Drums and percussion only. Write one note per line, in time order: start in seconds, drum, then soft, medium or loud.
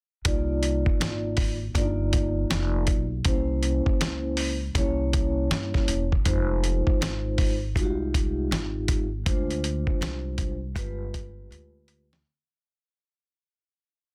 0.25 kick loud
0.25 closed hi-hat medium
0.63 closed hi-hat medium
0.86 kick medium
1.01 snare loud
1.01 closed hi-hat loud
1.37 kick medium
1.37 open hi-hat medium
1.75 kick medium
1.75 closed hi-hat medium
2.13 kick medium
2.13 closed hi-hat medium
2.51 snare loud
2.51 closed hi-hat medium
2.87 kick medium
2.87 closed hi-hat medium
3.25 kick loud
3.25 closed hi-hat medium
3.63 closed hi-hat medium
3.86 kick medium
4.01 snare loud
4.01 closed hi-hat loud
4.37 open hi-hat medium
4.75 kick medium
4.75 closed hi-hat medium
5.13 kick medium
5.13 closed hi-hat medium
5.51 snare loud
5.51 closed hi-hat medium
5.74 kick medium
5.74 snare soft
5.88 closed hi-hat medium
6.12 kick medium
6.25 kick loud
6.25 closed hi-hat medium
6.64 closed hi-hat medium
6.87 kick medium
7.02 snare loud
7.02 closed hi-hat loud
7.38 kick medium
7.38 open hi-hat soft
7.76 kick medium
7.76 closed hi-hat medium
8.14 kick medium
8.14 closed hi-hat medium
8.52 snare loud
8.52 closed hi-hat medium
8.88 kick medium
8.88 closed hi-hat medium
9.26 kick loud
9.26 closed hi-hat medium
9.51 closed hi-hat soft
9.64 closed hi-hat medium
9.87 kick medium
10.02 snare loud
10.02 closed hi-hat loud
10.38 kick medium
10.38 closed hi-hat medium
10.76 kick medium
10.76 closed hi-hat medium
11.14 kick medium
11.14 closed hi-hat medium
11.52 closed hi-hat medium
11.88 closed hi-hat medium
12.13 snare medium